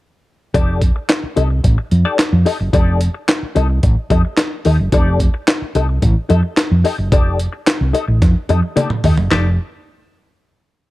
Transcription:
0.54 fingered electric bass F1, clean electric guitar D#4 G4 A4 D5, kick, closed hi-hat
0.82 kick, closed hi-hat
0.96 muted clean electric guitar stroke
1.09 muted clean electric guitar stroke, snare, clap, closed hi-hat
1.23 muted fingered electric bass stroke
1.36 fingered electric bass C2, clean electric guitar D#4 G4 A4 D#5, closed hi-hat
1.50 muted clean electric guitar stroke
1.64 fingered electric bass A1, muted clean electric guitar stroke, kick, closed hi-hat
1.78 muted clean electric guitar stroke
1.91 fingered electric bass F2, closed hi-hat
2.05 clean electric guitar D#4 G4 A4 D5
2.18 muted clean electric guitar stroke, snare, clap, closed hi-hat
2.33 fingered electric bass F2
2.46 clean electric guitar D#4 G4 A4 D#5, open hi-hat
2.60 fingered electric bass F#1, muted clean electric guitar stroke
2.73 fingered electric bass F1, clean electric guitar D#4 G4 A4 D5, kick, closed hi-hat
3.01 closed hi-hat
3.14 muted clean electric guitar stroke
3.28 muted clean electric guitar stroke, snare, clap, closed hi-hat
3.43 muted fingered electric bass stroke
3.55 fingered electric bass C2, clean electric guitar D#4 G4 A4 D#5, closed hi-hat
3.70 muted clean electric guitar stroke
3.83 fingered electric bass A1, muted clean electric guitar stroke, kick, closed hi-hat
4.10 fingered electric bass F2, clean electric guitar D#4 G4 A4 D#5, kick, closed hi-hat
4.25 muted clean electric guitar stroke
4.37 muted clean electric guitar stroke, snare, clap, closed hi-hat
4.65 fingered electric bass D#2, clean electric guitar D#4 G4 A4 D#5, open hi-hat
4.79 fingered electric bass F#1, muted clean electric guitar stroke
4.92 fingered electric bass F1, clean electric guitar D#4 G4 A4 D5, kick, closed hi-hat
5.20 kick, closed hi-hat
5.34 muted clean electric guitar stroke
5.47 muted clean electric guitar stroke, snare, clap, closed hi-hat
5.62 muted fingered electric bass stroke
5.75 fingered electric bass C2, clean electric guitar D#4 G4 A4 D#5, closed hi-hat
5.89 muted clean electric guitar stroke
6.02 fingered electric bass A1, muted clean electric guitar stroke, kick, closed hi-hat
6.29 fingered electric bass F2, clean electric guitar D#4 G4 A4 D#5, closed hi-hat
6.43 muted clean electric guitar stroke
6.57 muted clean electric guitar stroke, snare, clap, closed hi-hat
6.71 fingered electric bass F2
6.84 clean electric guitar D#4 G4 A4 D#5, open hi-hat
6.98 fingered electric bass F#1, muted clean electric guitar stroke
7.12 fingered electric bass F1, clean electric guitar D#4 G4 A4 D5, kick, closed hi-hat
7.39 closed hi-hat
7.53 muted clean electric guitar stroke
7.67 muted clean electric guitar stroke, snare, clap, closed hi-hat
7.81 fingered electric bass C2
7.93 clean electric guitar D#4 G4 A4 D#5, closed hi-hat
8.07 fingered electric bass A1, muted clean electric guitar stroke
8.22 fingered electric bass F2, muted clean electric guitar stroke, kick, snare, closed hi-hat
8.49 fingered electric bass F2, clean electric guitar D#4 G4 A4 D#5, closed hi-hat, high tom
8.62 muted clean electric guitar stroke
8.76 clean electric guitar D#4 G4 A4 D5, closed hi-hat, mid tom
8.90 mid tom
9.04 fingered electric bass D#2, clean electric guitar D#4 G4 A4 D#5, floor tom, open hi-hat
9.18 fingered electric bass F#1, muted clean electric guitar stroke, floor tom
9.31 fingered electric bass F1, clean electric guitar D#4 G4 A4 D5, snare, clap, floor tom

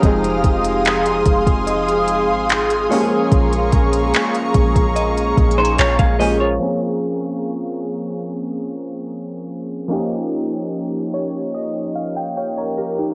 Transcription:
Already playing: synth bell A#4, ambient pad F5
0.02 808-style bass F1, synth keys F3 G#3 C4 D#4, ambient pad G#4 C6 D#6, kick, closed hi-hat
0.06 synth keys G#4
0.24 closed hi-hat
0.44 808-style bass F1, kick, closed hi-hat
0.64 closed hi-hat
0.85 clap, closed hi-hat
1.06 closed hi-hat
1.26 808-style bass F1, kick, closed hi-hat
1.47 kick, closed hi-hat
1.67 synth bell D#5, closed hi-hat
1.89 closed hi-hat
2.08 closed hi-hat
2.30 808-style bass G#1
2.49 clap, closed hi-hat
2.70 closed hi-hat
2.89 synth keys F3 G#3 A#3 C#4, synth bell C#5, ambient pad A#5 C#6, open hi-hat
2.94 synth keys G4
3.00 synth keys G#4
3.32 808-style bass A#1, kick, closed hi-hat
3.53 closed hi-hat
3.72 808-style bass A#1, kick, closed hi-hat
3.93 closed hi-hat
4.14 clap, closed hi-hat
4.35 closed hi-hat
4.54 808-style bass A#1, kick, closed hi-hat
4.76 kick, closed hi-hat
4.96 synth bell D#5, closed hi-hat
5.17 closed hi-hat
5.37 808-style bass A#1, kick, closed hi-hat
5.51 closed hi-hat
5.58 clean electric guitar D#4 C5
5.65 closed hi-hat
5.79 808-style bass A#1, clean electric guitar F4 C#5, clap, closed hi-hat
5.99 808-style bass A#1, clean electric guitar G#4 F5, kick, closed hi-hat
6.19 synth keys F3 G#3 A#3 C#4 G#4, clean electric guitar G4 D#5, open hi-hat
6.40 clean electric guitar F4 C#5
6.59 synth keys F3 A#3 C4 C#4
6.64 synth keys G#4
9.88 synth keys F3 A#3 C#4 D#4
9.92 synth keys G4
11.14 synth keys C#5
11.55 synth keys D#5
11.95 synth keys F5
12.16 synth keys G5
12.37 synth keys C#5 F5 G5
12.57 synth keys A#4 C#5
12.78 synth keys G4 A#4 A#5
12.98 synth keys D#4 G4

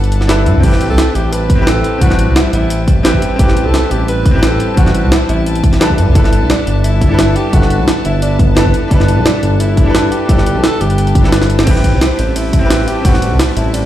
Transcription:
Already playing: analog synth bass G1, string section G3 B4 F#5 A5, grand piano D4 E4 A4 B4
0.04 closed hi-hat
0.12 closed hi-hat
0.21 snare
0.27 analog synth bass G1, grand piano D4 E4 A4 B4, tenor saxophone E4, snare, closed hi-hat
0.46 analog synth bass G2, closed hi-hat
0.55 analog synth bass B1
0.60 analog synth bass A1, string section G3 C4 E5 A5, grand piano C4 E4, tenor saxophone G4, kick, closed hi-hat, crash
0.65 grand piano G4 B4
0.73 snare
0.81 analog synth bass A1, closed hi-hat
0.90 analog synth bass C2, tenor saxophone A4
0.98 snare, closed hi-hat
1.15 analog synth bass A1, tenor saxophone G4, closed hi-hat
1.33 tenor saxophone B4, closed hi-hat
1.50 kick, closed hi-hat
1.55 grand piano C4 E4
1.60 grand piano G4 B4
1.67 tenor saxophone A4, snare, closed hi-hat
1.84 closed hi-hat
1.98 analog synth bass A1, grand piano C4 E4, tenor saxophone F#4, kick, closed hi-hat
2.03 grand piano G3 B4
2.10 snare
2.19 analog synth bass A1, closed hi-hat
2.28 analog synth bass C2
2.36 tenor saxophone E4, snare, closed hi-hat
2.53 analog synth bass A1, tenor saxophone E4, closed hi-hat
2.70 closed hi-hat
2.88 kick, closed hi-hat
3.03 grand piano C4 E4 G4 B4, tenor saxophone E4, snare, closed hi-hat
3.14 kick
3.22 closed hi-hat
3.36 analog synth bass A1, grand piano C4 E4, tenor saxophone G4, kick, closed hi-hat
3.40 grand piano G4 B4
3.48 snare
3.57 analog synth bass A1, closed hi-hat
3.66 analog synth bass C2, tenor saxophone A4
3.74 snare, closed hi-hat
3.91 analog synth bass A1, tenor saxophone G4, closed hi-hat
4.08 tenor saxophone B4, closed hi-hat
4.26 kick, closed hi-hat
4.31 grand piano C4 E4
4.36 grand piano G4 B4
4.43 tenor saxophone A4, snare, closed hi-hat
4.60 closed hi-hat
4.74 analog synth bass A1, grand piano C4 E4, tenor saxophone F#4, kick, closed hi-hat
4.79 grand piano G3 B4
4.86 snare
4.95 analog synth bass A1, closed hi-hat
5.04 analog synth bass C2
5.12 tenor saxophone E4, snare, closed hi-hat
5.29 analog synth bass A1, tenor saxophone E4, closed hi-hat
5.46 closed hi-hat
5.55 closed hi-hat
5.64 kick, closed hi-hat
5.73 snare, closed hi-hat
5.79 analog synth bass A1, grand piano D4 E4 A4 B4, snare, closed hi-hat
5.90 kick
5.98 analog synth bass G2, string section B4, closed hi-hat
6.07 analog synth bass B1
6.12 analog synth bass G1, grand piano D4 E4, kick, closed hi-hat
6.16 grand piano A4 B4
6.24 snare
6.33 analog synth bass G1, closed hi-hat
6.42 analog synth bass B1
6.50 tenor saxophone D4, snare, closed hi-hat
6.67 analog synth bass G1, closed hi-hat
6.84 tenor saxophone E4, closed hi-hat
7.01 kick, closed hi-hat
7.07 grand piano D4 E4
7.12 grand piano A4 B4
7.19 snare, closed hi-hat
7.36 tenor saxophone G4, closed hi-hat
7.50 analog synth bass G1, grand piano D4 E4, tenor saxophone F#4, kick, closed hi-hat
7.54 grand piano A4 B4
7.62 snare
7.70 analog synth bass G1, closed hi-hat
7.79 analog synth bass B1
7.88 snare, closed hi-hat
8.05 analog synth bass G1, tenor saxophone E4, closed hi-hat
8.22 tenor saxophone D4, closed hi-hat
8.39 tenor saxophone B3, kick, closed hi-hat
8.55 grand piano D4 E4 A4 B4, snare, closed hi-hat
8.66 kick
8.74 closed hi-hat
8.88 analog synth bass G1, grand piano D4 E4, kick, closed hi-hat
8.92 grand piano A4 B4
9.00 snare
9.08 analog synth bass G1, closed hi-hat
9.17 analog synth bass B1
9.25 tenor saxophone D4, snare, closed hi-hat
9.43 analog synth bass G1, closed hi-hat
9.60 tenor saxophone E4, closed hi-hat
9.77 kick, closed hi-hat
9.83 grand piano D4 E4
9.88 grand piano A4 B4
9.95 snare, closed hi-hat
10.12 tenor saxophone G4, closed hi-hat
10.26 analog synth bass G1, grand piano D4 E4, kick, closed hi-hat
10.30 grand piano A4 B4
10.38 snare
10.46 analog synth bass G1, closed hi-hat
10.55 analog synth bass B1
10.64 tenor saxophone A4, snare, closed hi-hat
10.81 analog synth bass G1, tenor saxophone G4, closed hi-hat
10.90 closed hi-hat
10.98 closed hi-hat
11.07 closed hi-hat
11.15 kick, closed hi-hat
11.21 grand piano D4 E4, snare
11.25 grand piano A4 B4
11.32 analog synth bass G1, snare, closed hi-hat
11.42 snare
11.50 closed hi-hat
11.59 snare
11.64 analog synth bass A1, string section G3 C4 E5 A5, grand piano C4 E4, kick, closed hi-hat, ride, crash
11.68 grand piano G4 B4
11.76 snare
11.84 analog synth bass A1, kick, closed hi-hat, ride
11.93 analog synth bass C2
12.01 tenor saxophone C4, snare, closed hi-hat, ride
12.19 analog synth bass A1, closed hi-hat, ride
12.36 tenor saxophone E4, closed hi-hat, ride
12.53 kick, closed hi-hat, ride
12.59 grand piano C4 E4
12.63 grand piano G4 B4
12.70 snare, closed hi-hat, ride
12.88 tenor saxophone G4, closed hi-hat, ride
13.02 analog synth bass A1, grand piano C4 E4, tenor saxophone F#4, kick, closed hi-hat, ride
13.06 grand piano G3 B4
13.14 snare
13.22 analog synth bass A1, closed hi-hat, ride
13.31 analog synth bass C2
13.39 snare, closed hi-hat, ride
13.57 analog synth bass A1, tenor saxophone E4, closed hi-hat, ride
13.74 tenor saxophone D4, closed hi-hat, ride

